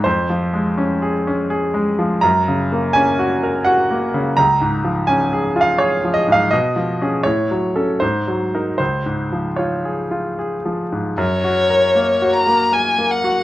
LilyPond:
<<
  \new Staff \with { instrumentName = "Violin" } { \time 3/4 \key des \major \tempo 4 = 82 r2. | r2. | r2. | r2. |
r2. | des''4. bes''8 aes''8 ges''8 | }
  \new Staff \with { instrumentName = "Grand piano" } { \time 3/4 \key des \major c''4. r4. | bes''4 aes''4 ges''4 | bes''4 aes''8. f''16 des''8 ees''16 f''16 | ees''4 des''4 c''4 |
c''4 des''4 r4 | r2. | }
  \new Staff \with { instrumentName = "Grand piano" } { \time 3/4 \key des \major \tuplet 3/2 { f,8 f8 aes8 des'8 aes'8 des'8 aes'8 aes8 f8 } | \tuplet 3/2 { ges,8 des8 bes8 des'8 ges'8 bes'8 ges'8 bes8 des8 } | \tuplet 3/2 { des,8 aes,8 f8 des'8 aes'8 f'8 aes'8 f8 aes,8 } | \tuplet 3/2 { ces8 f8 <des' aes'>8 a,8 ges8 <des' a'>8 aes,8 ges8 <ees' bes'>8 } |
\tuplet 3/2 { des,8 aes,8 f8 f'8 aes'8 f'8 aes'8 f8 aes,8 } | \tuplet 3/2 { ges,8 ges'8 bes'8 bes8 ges'8 bes8 bes'8 bes8 ges'8 } | }
>>